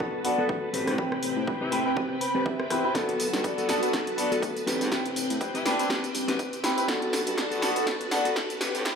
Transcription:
Already playing: string machine F#4 B4 A5
0.00 fingered electric bass G1, clean electric guitar B3 F#4 A4, kick
0.24 grand piano B3 D4 F#4 A4, open hi-hat
0.38 clean electric guitar B3 F#4 A4, muted fingered electric bass stroke
0.49 fingered electric bass D2, kick
0.73 fingered electric bass A1, clean electric guitar C4 G4 B4, string machine C4 G5, open hi-hat
0.87 fingered electric bass A2, cross-stick, open hi-hat
0.98 fingered electric bass A1, grand piano C4 E4 G4 B4, kick
1.12 cross-stick
1.23 fingered electric bass A1, open hi-hat
1.36 fingered electric bass A2
1.47 grand piano C4 E4 G4 B4, kick
1.61 clean electric guitar C4 G4 B4, horn section E4
1.72 fingered electric bass A2, grand piano C4 E4 G4 B4, open hi-hat
1.85 grand piano C4 E4 G4 B4
1.96 clean electric guitar C4 G4 B4, kick
2.21 clean electric guitar B5, open hi-hat
2.35 clean electric guitar C4 G4 B4
2.46 clean electric guitar E5, kick
2.60 cross-stick
2.70 fingered electric bass E2, grand piano C4 E4 G4 B4, cross-stick, open hi-hat
2.84 grand piano C4 E4 G4 B4
2.94 fingered electric bass G1, clean electric guitar B3 F#4 A4, grand piano B3 D4 F#4 A4, string machine F#4 A5, kick, snare, closed hi-hat, tambourine
3.09 closed hi-hat
3.20 fingered electric bass G1, open hi-hat, tambourine
3.33 fingered electric bass G2, snare, closed hi-hat, tambourine
3.44 grand piano B3 D4 F#4 A4, kick, closed hi-hat, tambourine
3.58 clean electric guitar B3 F#4 A4, closed hi-hat, tambourine
3.69 fingered electric bass G2, grand piano B3 D4 F#4 A4, snare, open hi-hat, tambourine
3.82 grand piano B3 D4 F#4 A4, closed hi-hat, tambourine
3.93 fingered electric bass G1, clean electric guitar B3 F#4 A4, kick, snare, closed hi-hat, tambourine
4.07 closed hi-hat
4.17 grand piano B3 D4 F#4 A4, open hi-hat, tambourine
4.31 clean electric guitar B3 F#4 A4, muted fingered electric bass stroke, closed hi-hat, tambourine
4.42 fingered electric bass D2, kick, closed hi-hat, tambourine
4.57 closed hi-hat, tambourine
4.66 fingered electric bass A1, clean electric guitar C4 G4 B4, string machine C4 G5, snare, open hi-hat, tambourine
4.81 fingered electric bass A2, open hi-hat, tambourine
4.91 fingered electric bass A1, grand piano C4 E4 G4 B4, kick, snare, closed hi-hat, tambourine
5.06 closed hi-hat
5.16 fingered electric bass A1, open hi-hat, tambourine
5.30 fingered electric bass A2, closed hi-hat, tambourine
5.41 grand piano C4 E4 G4 B4, kick, closed hi-hat, tambourine
5.54 clean electric guitar C4 G4 B4, horn section E4, closed hi-hat, tambourine
5.65 fingered electric bass A2, grand piano C4 E4 G4 B4, horn section D4, snare, open hi-hat, tambourine
5.79 grand piano C4 E4 G4 B4, closed hi-hat, tambourine
5.89 clean electric guitar C4 G4 B4, kick, snare, closed hi-hat, tambourine
6.04 closed hi-hat, tambourine
6.15 fingered electric bass G2, open hi-hat, tambourine
6.28 fingered electric bass F#2, clean electric guitar C4 G4 B4, snare, closed hi-hat, tambourine
6.39 kick, closed hi-hat, tambourine
6.53 closed hi-hat, tambourine
6.63 grand piano C4 E4 G4 B4, snare, open hi-hat, tambourine
6.77 grand piano C4 E4 G4 B4, closed hi-hat, tambourine
6.88 fingered electric bass G1, clean electric guitar B3 F#4 A4, grand piano B3 D4, string machine F#4 B4 A5, kick, snare, closed hi-hat, tambourine
7.02 closed hi-hat
7.13 fingered electric bass G1, snare, open hi-hat, tambourine
7.27 fingered electric bass G2, closed hi-hat, tambourine
7.37 grand piano B3 D4 F#4 A4, kick, snare, closed hi-hat, tambourine
7.51 clean electric guitar B3 F#4 A4, closed hi-hat, tambourine
7.62 fingered electric bass G2, grand piano B3 D4 F#4 A4, snare, open hi-hat, tambourine
7.75 grand piano B3 D4 F#4 A4, closed hi-hat, tambourine
7.86 fingered electric bass G1, clean electric guitar B3 F#4 A4, kick, snare, closed hi-hat, tambourine
8.01 closed hi-hat
8.11 grand piano B3 D4 F#4 A4, snare, open hi-hat, tambourine
8.25 clean electric guitar B3 F#4 A4, muted fingered electric bass stroke, closed hi-hat, tambourine
8.36 fingered electric bass D2, kick, snare, closed hi-hat, tambourine
8.50 closed hi-hat, tambourine
8.60 fingered electric bass A1, clean electric guitar C4 G4 B4, string machine C4 G5, snare, open hi-hat, tambourine
8.74 fingered electric bass A2, open hi-hat, tambourine
8.85 fingered electric bass A1, grand piano C4 E4 G4 B4, kick, snare, closed hi-hat, tambourine

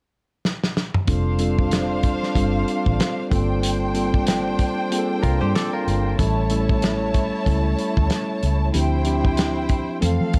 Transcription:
0.45 snare
0.64 snare
0.77 snare
0.94 mid tom
1.07 fingered electric bass F1, tine electric piano G3 C4 D4 F4 A4, violin section D4 C5 F5, kick, closed hi-hat
1.39 tine electric piano G3 C4 D4 F4 A4, closed hi-hat
1.59 kick
1.71 snare, closed hi-hat
2.03 kick, closed hi-hat
2.23 snare
2.35 fingered electric bass G1, tine electric piano G3 C4 D4 F4 A4, kick, closed hi-hat
2.68 closed hi-hat
2.86 fingered electric bass A1, kick
3.00 snare, closed hi-hat
3.31 fingered electric bass G1, tine electric piano G3 A#3 C4 F4 A4, violin section D4 C5 G5, kick, closed hi-hat
3.63 closed hi-hat
3.94 tine electric piano G3 A#3 C4 F4 A4, closed hi-hat
4.14 kick
4.27 snare, closed hi-hat
4.59 kick, closed hi-hat
4.91 tine electric piano G3 A#3 C4 F4 G#4, closed hi-hat
4.98 tine electric piano A4
5.23 fingered electric bass C2, clean electric guitar F4 A#4, kick, closed hi-hat
5.41 fingered electric bass G2, clean electric guitar G4 C5
5.55 clean electric guitar A4 D5, snare, closed hi-hat
5.73 clean electric guitar F4 A#4
5.87 fingered electric bass G1, closed hi-hat
6.18 fingered electric bass A1, tine electric piano G3 A3 C#4 E4 A4, violin section E4 C#5 A5, kick, closed hi-hat
6.50 tine electric piano G3 A3 C#4 E4 A4, closed hi-hat
6.69 kick
6.82 snare, closed hi-hat
7.14 kick, closed hi-hat
7.46 fingered electric bass C#2, tine electric piano G3 A3 C#4 E4 A4, kick, closed hi-hat
7.79 closed hi-hat
7.97 fingered electric bass D2, kick
8.10 snare, closed hi-hat
8.43 fingered electric bass C#2, closed hi-hat
8.73 fingered electric bass D2, tine electric piano F3 C4 D4 E4 G4, violin section E4 C5 G5, closed hi-hat
9.05 tine electric piano F3 C4 D4 E4 G4, closed hi-hat
9.25 kick
9.37 snare, closed hi-hat
9.69 kick, closed hi-hat
10.01 fingered electric bass F2, tine electric piano E3 F3 A3 C4 A4, violin section C4 A4 F5, closed hi-hat
10.21 fingered electric bass F3
10.33 fingered electric bass F2, kick, closed hi-hat

